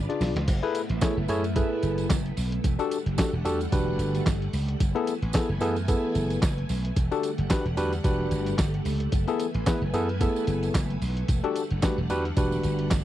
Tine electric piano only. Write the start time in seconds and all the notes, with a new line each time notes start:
0.09 D4 F4 G#4 D5
0.63 E4 G#4 A4 B4
1.02 E4 G#4 A4 C#5
1.29 E4 G#4 A4 C#5
1.56 E4 G#4 A4 B4
2.79 D4 F#4 G4 A4
3.18 D4 F#4 G4 A4
3.45 D4 F#4 G4 A4
3.72 D4 F#4 G4 B4
4.95 B3 E4 G#4 A4
5.34 B3 E4 G#4 A4
5.61 B3 E4 G#4 A4
5.88 B3 E4 G#4 A4
7.11 D4 F#4 G4 A4
7.50 D4 F#4 G4 B4
7.77 D4 F#4 G4 B4
8.04 D4 F#4 G4 B4
9.27 B3 E4 G#4 A4
9.67 B3 E4 G#4 B4
9.94 B3 E4 G#4 A4
10.21 B3 E4 G#4 A4
11.44 D4 F#4 G4 A4
11.82 D4 F#4 G4 B4
12.10 D4 F#4 G4 B4
12.37 D4 F#4 G4 B4